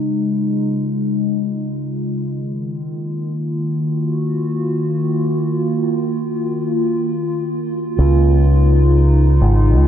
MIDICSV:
0, 0, Header, 1, 3, 480
1, 0, Start_track
1, 0, Key_signature, -5, "major"
1, 0, Tempo, 500000
1, 9482, End_track
2, 0, Start_track
2, 0, Title_t, "Ambient pad"
2, 0, Program_c, 0, 92
2, 0, Note_on_c, 0, 49, 78
2, 0, Note_on_c, 0, 56, 78
2, 0, Note_on_c, 0, 63, 76
2, 0, Note_on_c, 0, 65, 81
2, 2176, Note_off_c, 0, 49, 0
2, 2179, Note_off_c, 0, 56, 0
2, 2180, Note_on_c, 0, 51, 85
2, 2623, Note_on_c, 0, 58, 85
2, 3137, Note_off_c, 0, 63, 0
2, 3445, Note_on_c, 0, 66, 70
2, 7667, Note_off_c, 0, 51, 0
2, 7672, Note_off_c, 0, 66, 0
2, 7673, Note_on_c, 0, 49, 77
2, 7941, Note_on_c, 0, 63, 78
2, 8160, Note_on_c, 0, 56, 75
2, 9482, Note_off_c, 0, 49, 0
2, 9482, Note_off_c, 0, 56, 0
2, 9482, Note_off_c, 0, 58, 0
2, 9482, Note_off_c, 0, 63, 0
2, 9482, Note_off_c, 0, 65, 0
2, 9482, End_track
3, 0, Start_track
3, 0, Title_t, "Fingered electric bass"
3, 0, Program_c, 1, 33
3, 7664, Note_on_c, 1, 37, 98
3, 9011, Note_off_c, 1, 37, 0
3, 9036, Note_on_c, 1, 32, 90
3, 9376, Note_off_c, 1, 32, 0
3, 9376, Note_on_c, 1, 37, 101
3, 9482, Note_off_c, 1, 37, 0
3, 9482, End_track
0, 0, End_of_file